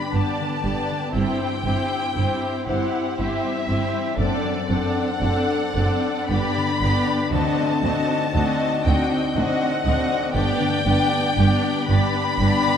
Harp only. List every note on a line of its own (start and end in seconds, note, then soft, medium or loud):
0.00 1.14 G2 soft
0.00 0.39 D3 soft
0.00 0.13 B3 soft
0.00 1.19 D4 soft
0.00 1.19 D5 soft
0.14 0.64 B3 soft
0.40 0.89 D3 soft
0.65 1.19 B3 soft
0.90 1.19 D3 soft
1.15 4.23 G2 soft
1.41 3.43 G3 soft
1.66 3.18 C4 soft
1.91 2.42 E4 soft
2.17 2.68 C5 soft
2.43 2.94 E4 soft
2.69 6.35 C5 soft
2.95 4.23 E4 soft
3.19 3.67 C4 soft
3.44 3.92 G3 soft
3.68 4.68 C4 soft
3.93 4.22 G3 soft
4.18 6.34 F#2 soft
4.44 6.35 F#3 soft
4.70 6.35 C4 soft
4.95 5.46 D4 soft
5.21 5.74 A4 soft
5.48 6.02 D4 soft
5.75 6.34 A4 soft
6.03 7.06 D4 soft
6.30 7.37 G2 soft
6.56 7.31 D3 soft
6.82 7.36 B3 soft
7.07 10.97 D4 soft
7.32 10.38 D3 medium
7.57 9.59 A3 soft
7.83 9.34 C4 soft
8.08 8.58 D#4 soft
8.34 8.83 F#4 soft
8.59 9.09 D#4 soft
8.84 10.38 F#4 soft
9.10 10.38 D#4 soft
9.35 9.84 C4 soft
9.60 10.09 A3 soft
9.85 10.39 C4 soft
10.10 10.39 A3 soft
10.35 12.77 G2 medium
10.60 12.65 D3 soft
10.86 12.39 B3 soft
11.13 11.64 D4 soft
11.39 11.89 G4 soft
11.65 12.14 D4 soft
11.90 12.77 G4 soft
12.15 12.77 D4 soft
12.40 12.77 B3 soft
12.66 12.77 D3 soft